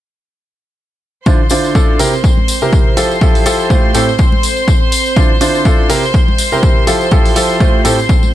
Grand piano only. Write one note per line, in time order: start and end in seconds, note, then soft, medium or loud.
1.26 1.39 D3 medium
1.26 1.39 D4 medium
1.26 1.39 E4 medium
1.26 1.39 F4 medium
1.26 1.39 C5 medium
1.51 1.73 D3 medium
1.51 1.73 D4 medium
1.51 1.73 E4 medium
1.51 1.73 F4 medium
1.51 1.73 C5 medium
1.75 1.97 D4 medium
1.75 1.97 E4 medium
1.75 1.97 F4 medium
1.75 1.97 A4 loud
2.00 2.12 C3 medium
2.00 2.12 C4 medium
2.00 2.12 E4 medium
2.00 2.12 G4 medium
2.00 2.12 A#4 medium
2.62 2.94 C3 medium
2.62 2.94 C4 medium
2.62 2.94 E4 medium
2.62 2.94 G4 medium
2.62 2.94 A#4 medium
2.97 3.15 F3 medium
2.97 3.15 E4 medium
2.97 3.15 F4 medium
2.97 3.15 G4 medium
2.97 3.15 A4 medium
3.21 3.43 F3 medium
3.21 3.43 E4 medium
3.21 3.43 F4 medium
3.21 3.43 G4 medium
3.21 3.43 A4 medium
3.46 3.68 F3 medium
3.46 3.68 E4 medium
3.46 3.68 F4 medium
3.46 3.68 G4 medium
3.46 3.68 A4 loud
3.70 3.92 A3 medium
3.70 3.92 E4 medium
3.70 3.92 F4 medium
3.70 3.92 G4 medium
3.70 3.92 C5 medium
3.95 4.07 A2 medium
3.95 4.07 C4 medium
3.95 4.07 E4 medium
3.95 4.07 G4 medium
3.95 4.07 A4 medium
5.17 5.29 D3 medium
5.17 5.29 D4 medium
5.17 5.29 E4 medium
5.17 5.29 F4 medium
5.17 5.29 C5 medium
5.41 5.63 D3 medium
5.41 5.63 D4 medium
5.41 5.63 E4 medium
5.41 5.63 F4 medium
5.41 5.63 C5 medium
5.65 5.87 D4 medium
5.65 5.87 E4 medium
5.65 5.87 F4 medium
5.65 5.87 A4 loud
5.90 6.02 C3 medium
5.90 6.02 C4 medium
5.90 6.02 E4 medium
5.90 6.02 G4 medium
5.90 6.02 A#4 medium
6.52 6.85 C3 medium
6.52 6.85 C4 medium
6.52 6.85 E4 medium
6.52 6.85 G4 medium
6.52 6.85 A#4 medium
6.87 7.06 F3 medium
6.87 7.06 E4 medium
6.87 7.06 F4 medium
6.87 7.06 G4 medium
6.87 7.06 A4 medium
7.11 7.33 F3 medium
7.11 7.33 E4 medium
7.11 7.33 F4 medium
7.11 7.33 G4 medium
7.11 7.33 A4 loud
7.36 7.58 F3 medium
7.36 7.58 E4 medium
7.36 7.58 F4 medium
7.36 7.58 G4 medium
7.36 7.58 A4 loud
7.60 7.82 A3 medium
7.60 7.82 E4 medium
7.60 7.82 F4 medium
7.60 7.82 G4 medium
7.60 7.82 C5 loud
7.85 7.97 A2 medium
7.85 7.97 C4 medium
7.85 7.97 E4 medium
7.85 7.97 G4 medium
7.85 7.97 A4 medium